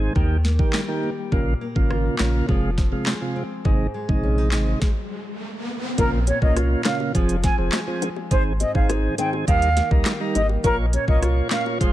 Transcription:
Already playing: G#2 D#3 G#3 C4 D#4 G#4
0.15 D#2 D#3 A#3 G4, kick
0.45 A#3, snare
0.59 D#3 A#3 G4, kick
0.73 G3, snare, clap
0.88 D#3 A#3 G4
1.03 A#3
1.32 A#1 A#2 C#3 A#3 F4, kick
1.61 A#3
1.75 G#1 C#3 A#3 F4, kick
1.90 F4, cross-stick
2.19 A#1 C#3 A#3 C#4 F4, snare, clap
2.48 F1 C3 F3 G#3 F4, kick
2.78 C4, kick, snare
2.92 C3 G#3 F4
3.06 G#3, snare, clap
3.21 C3 G#3 F4
3.36 C4
3.65 G#1 G#2 C3 G#3 D#4, kick, riser
3.94 G#3
4.08 A#1 C3 G#3 D#4, kick
4.23 C#4
4.38 D#4
4.52 G#1 C3 G#3 C4 D#4, snare, clap
4.82 kick, snare
5.98 A#1 A#2 C#3 A#3 F4 A#4, kick, closed hi-hat
6.27 C#4 C#5, closed hi-hat, high bongo
6.42 C2 A#3 C#4 F4 D#5, kick
6.56 F4, cross-stick, closed hi-hat, high bongo
6.85 C#3 A#3 C#4 F4 F5, snare, clap, closed hi-hat, low bongo
7.00 high bongo
7.14 F1 F3 C4 G#4, kick, closed hi-hat
7.29 closed hi-hat
7.44 C4 G#5, kick, snare, closed hi-hat, high bongo
7.58 F1 F3 C4 G#4
7.72 G#3, snare, clap, closed hi-hat, high bongo
7.87 F3 C4 G#4
8.02 C4, closed hi-hat, low bongo
8.16 high bongo
8.31 G#1 G#2 D#3 C4 G#4 C5, kick, closed hi-hat
8.60 C4 D#5, closed hi-hat, high bongo
8.75 G#1 D#3 C4 G#4 F5, kick
8.89 D#4, cross-stick, closed hi-hat, high bongo
9.18 D#3 C4 G#4 G5, closed hi-hat, low bongo
9.33 high bongo
9.47 D#2 D#3 G3 D#4 A#4 F5, kick, closed hi-hat
9.62 closed hi-hat
9.77 A#3, snare, closed hi-hat, high bongo
9.91 C#2 G3 D#4 A#4, kick
10.05 G3, snare, clap, closed hi-hat, high bongo
10.20 G3 D#4 A#4
10.35 G#1 A#3 D#5, closed hi-hat, low bongo
10.49 high bongo
10.64 A#1 A#2 A#3 F4 A#4 C#5, kick, closed hi-hat
10.93 C#4 C#5, closed hi-hat, high bongo
11.08 C2 A#3 F4 C#5 D#5, kick
11.22 F4, cross-stick, closed hi-hat, high bongo
11.51 A#3 C#4 F4 C#5 F5, snare, clap, closed hi-hat, low bongo
11.66 high bongo
11.80 F1 F3 G#3 F4 C5, kick, closed hi-hat

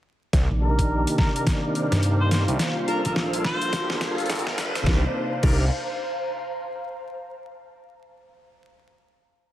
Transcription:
0.33 C2 C3 D#3 A#3 C5 D5, kick, snare, closed hi-hat, riser
0.51 A#1
0.61 D4 D#4 G4 A#4
0.78 F5, kick, closed hi-hat
0.86 A#5
1.07 closed hi-hat
1.18 A#4, kick, snare
1.35 A#4, closed hi-hat
1.47 kick, snare, closed hi-hat
1.75 closed hi-hat
1.92 G2, snare, closed hi-hat
2.03 closed hi-hat
2.20 C5
2.31 C5, snare, closed hi-hat
2.48 C2, closed hi-hat
2.59 G3 A#3 F4, snare, closed hi-hat
2.88 D4 F4 A4 A#4, closed hi-hat
3.05 A#1 A#4, kick, closed hi-hat
3.16 snare
3.33 closed hi-hat
3.44 C5, kick, snare
3.62 closed hi-hat
3.73 kick, snare, closed hi-hat
3.90 G1, snare
4.01 snare, closed hi-hat
4.18 closed hi-hat
4.20 closed hi-hat
4.26 snare, closed hi-hat
4.30 G1, closed hi-hat
4.35 closed hi-hat
4.39 closed hi-hat
4.47 kick, snare
4.58 snare, closed hi-hat
4.75 G1, snare, closed hi-hat
4.86 C2 C3 A#3 D4 D#4 G4 A#4 C5 D5, kick, snare
4.98 F5
5.07 A#5
5.43 C2 D4 D#4 G4 A#4, kick, crash

